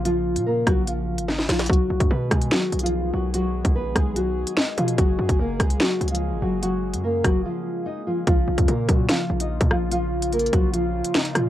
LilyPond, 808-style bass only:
\new Staff \with { instrumentName = "808-style bass" } { \clef bass \time 4/4 \key bes \phrygian \tempo 4 = 146 bes,,8. bes,8. bes,,4~ bes,,16 aes,,8. bes,,8 | b,,8 b,,16 fis,16 b,8 b,8 r8 b,,4 b,,8~ | b,,8. b,,8 bes,,16 b,,4~ b,,16 r8. b,8 | ges,,8 ges,16 ges,,16 ges,,8 des,8 r8 des,8. aes,,16 ges,,8~ |
ges,,8. ges,8. ges,,8 r2 | bes,,8 bes,,16 f,16 bes,8 bes,8 r8 bes,,8. bes,16 bes,,8~ | bes,,4. bes,,4~ bes,,16 r8. bes,8 | }